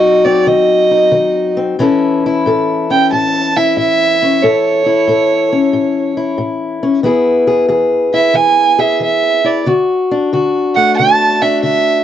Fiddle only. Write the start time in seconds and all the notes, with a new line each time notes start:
Already playing: D#5
0.25 D5
0.47 D#5
2.91 G5
3.13 A5
3.57 E5
3.78 E5
4.42 C#5
8.14 E5
8.35 G#5
8.80 E5
9.03 E5
9.46 D5
10.75 F#5
10.97 A5
11.42 E5
11.63 E5